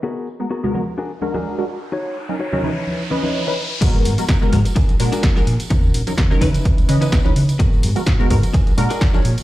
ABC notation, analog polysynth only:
X:1
M:4/4
L:1/16
Q:"Swing 16ths" 1/4=127
K:G#m
V:1 name="Analog polysynth"
z3 [G,B,FA] z [G,B,FA] [G,B,FA] z3 [G,=DFA]3 [G,DFA] z2 | z3 [F,CDA] z [F,CDA] [E,CDB] z3 [E,CBd]3 [E,CDB] z2 | [G,B,FA]3 [G,B,FA] z [G,B,FA] [G,B,FA] z3 [G,=DFA]3 [G,DFA] z2 | z3 [F,CDA] z [F,CDA] [E,CDB] z3 [E,CBd]3 [E,CDB] z2 |
z3 [G,B,FA] z [G,B,FA] [G,B,FA] z3 [G,=DFA]3 [G,DFA] z2 |]